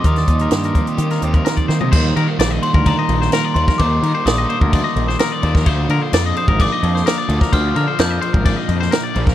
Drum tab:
CC |----------------|x-x-x-x-x-x-x-x-|x-x-x-x-x-x-x-x-|x-x-x-x-x-x-x-x-|
HH |xxxxxxxxxxxxxx--|----------------|----------------|----------------|
SD |-o--o----o--o-o-|----o------oo--o|----o------oo--o|----o------oo--o|
FT |---------------o|----------------|----------------|----------------|
BD |o-o---o----o-o--|o------oo------o|o------oo------o|o------oo------o|

CC |x-x-x-x-x-x-x-x-|
HH |----------------|
SD |----o------oo--o|
FT |----------------|
BD |o------oo------o|